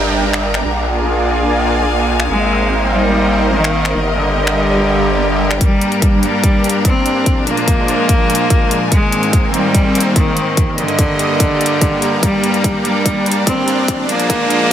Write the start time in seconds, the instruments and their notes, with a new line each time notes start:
Already playing: wobble bass G1, supersaw synth G3 D4 A#4 G5, string section D4 A#4 G5 A#5, downlifter
0.33 finger snap
0.54 finger snap
0.64 wobble bass A#1, supersaw synth A#3 F4 G#4 D5
0.85 string section G#5
0.90 string section F5
2.20 finger snap
2.30 wobble bass G#1, cello G#3, supersaw synth A#3 D#4 A#4 C5, string section C4
2.92 cello G3
3.04 string section D#5
3.54 cello D#3
3.64 finger snap
3.85 finger snap
3.95 wobble bass G1, supersaw synth G3 G4 D#5, string section G4
4.16 cello D3
4.47 finger snap
4.69 string section A#5
4.78 swell
5.51 finger snap
5.61 supersaw synth G2 G3 A#3 D4, cello G3, kick, closed hi-hat
5.81 closed hi-hat
5.92 closed hi-hat
6.02 kick, closed hi-hat
6.11 string section D5
6.23 cello G3, closed hi-hat
6.44 kick, closed hi-hat
6.64 closed hi-hat
6.69 closed hi-hat
6.85 cello C4, kick, closed hi-hat
7.06 closed hi-hat
7.26 supersaw synth A#2 F3 G#3, string section F4, kick, closed hi-hat
7.47 cello A#3, closed hi-hat
7.57 closed hi-hat
7.68 kick, closed hi-hat
7.88 closed hi-hat
7.95 string section G#5
8.09 kick, closed hi-hat
8.30 closed hi-hat
8.35 closed hi-hat
8.50 kick, closed hi-hat
8.71 closed hi-hat
8.92 supersaw synth G#2 D#3 A#3 C4, cello G#3, string section C4, kick, closed hi-hat
9.12 closed hi-hat
9.23 closed hi-hat
9.33 string section C5, kick, closed hi-hat
9.54 cello G3, closed hi-hat
9.75 kick, closed hi-hat
9.95 closed hi-hat
10.00 closed hi-hat
10.16 cello D#3, kick, closed hi-hat
10.37 closed hi-hat
10.57 supersaw synth G2 G3 A#3 D#5, string section G4, kick, closed hi-hat
10.76 cello D3, string section D#5, closed hi-hat
10.88 closed hi-hat
10.99 kick, closed hi-hat
11.19 closed hi-hat
11.32 string section A#5
11.40 kick, closed hi-hat
11.61 closed hi-hat
11.66 closed hi-hat
11.81 kick, closed hi-hat
12.02 closed hi-hat
12.23 cello G3, supersaw synth D4, kick, closed hi-hat, riser
12.41 string section D5, closed hi-hat
12.54 closed hi-hat
12.64 kick, closed hi-hat
12.85 cello G3, closed hi-hat
13.06 kick, closed hi-hat
13.26 closed hi-hat
13.32 closed hi-hat
13.47 cello C4, kick, closed hi-hat
13.68 closed hi-hat
13.88 supersaw synth A#2 F3 G#3, string section F4, kick, closed hi-hat
14.09 cello A#3, closed hi-hat
14.20 closed hi-hat
14.30 kick, closed hi-hat
14.50 closed hi-hat
14.63 string section G#5